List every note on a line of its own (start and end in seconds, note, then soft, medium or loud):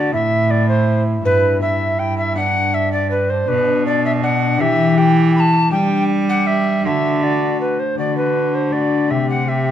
0.00 0.15 D3 medium
0.00 1.25 A3 soft
0.00 0.14 D4 soft
0.00 0.13 F#4 medium
0.00 0.14 F#4 soft
0.00 0.13 D5 medium
0.09 1.25 C4 soft
0.09 1.21 E4 soft
0.09 1.26 A4 soft
0.13 1.27 A2 medium
0.13 1.24 A2 medium
0.13 1.23 E4 medium
0.13 0.52 E5 loud
0.50 0.68 D5 medium
0.68 1.03 C5 medium
1.21 3.44 G2 medium
1.21 3.48 G2 medium
1.21 1.57 B3 medium
1.21 1.58 E4 soft
1.21 1.60 B4 soft
1.21 1.60 B4 loud
1.25 1.62 E4 medium
1.58 2.33 B3 soft
1.58 2.37 E4 soft
1.58 1.99 E4 medium
1.58 2.35 B4 soft
1.58 2.00 E5 medium
1.99 2.39 E4 medium
1.99 2.17 G5 medium
2.18 2.36 E5 medium
2.34 3.44 B3 soft
2.34 3.45 D4 soft
2.34 5.74 B4 soft
2.34 2.75 F#5 loud
2.38 3.48 D4 medium
2.74 2.92 E5 loud
2.92 3.10 D5 medium
3.11 3.31 B4 medium
3.30 3.50 C5 medium
3.45 4.62 B2 medium
3.45 4.18 B3 soft
3.45 4.19 D4 medium
3.45 3.85 D4 medium
3.45 4.21 F#4 medium
3.45 3.86 B4 loud
3.86 4.23 D4 medium
3.86 4.04 D5 medium
4.05 4.11 E5 loud
4.20 4.56 B3 medium
4.20 4.61 D4 medium
4.20 4.63 D4 medium
4.20 4.61 F#4 medium
4.20 4.62 F#5 medium
4.57 5.74 E3 medium
4.57 5.72 E3 medium
4.57 4.92 B3 medium
4.57 4.94 E4 medium
4.57 4.95 G4 medium
4.57 4.99 E5 loud
4.61 4.97 G4 medium
4.94 5.67 B3 medium
4.94 5.73 E4 medium
4.94 5.70 G4 medium
4.98 5.45 G4 medium
4.98 5.34 G5 loud
5.35 5.41 B5 medium
5.40 5.71 A5 loud
5.69 6.87 G3 medium
5.69 6.85 B3 medium
5.69 6.81 D4 medium
5.69 6.86 G4 medium
5.69 6.81 G4 medium
5.69 6.03 G5 loud
6.29 6.48 F#5 loud
6.47 6.84 E5 medium
6.81 7.97 D3 medium
6.81 7.17 A3 soft
6.81 7.19 D4 soft
6.81 7.20 F#4 soft
6.85 7.80 D3 medium
6.85 7.23 F#4 medium
6.85 7.25 E5 loud
7.19 7.93 A3 soft
7.19 7.95 D4 soft
7.19 7.96 F#4 soft
7.23 7.79 F#4 medium
7.23 7.60 D5 medium
7.60 7.81 B4 medium
7.79 7.98 C5 medium
7.95 9.12 D3 medium
7.95 9.12 D3 soft
7.95 8.68 A3 soft
7.95 8.70 D4 soft
7.95 8.71 F#4 soft
7.95 8.16 D5 medium
7.99 8.70 F#4 medium
8.17 8.56 B4 medium
8.54 8.74 C5 medium
8.69 9.10 A3 soft
8.69 9.11 D4 soft
8.69 9.12 F#4 soft
8.69 9.12 D5 medium
8.74 9.12 F#4 soft
9.07 9.71 C3 soft
9.07 9.44 C4 soft
9.07 9.45 G4 soft
9.07 9.47 G4 soft
9.07 9.29 E5 medium
9.11 9.71 C3 medium
9.29 9.50 F#5 medium
9.45 9.71 C4 soft
9.45 9.71 G4 soft
9.45 9.71 G4 medium
9.45 9.71 E5 medium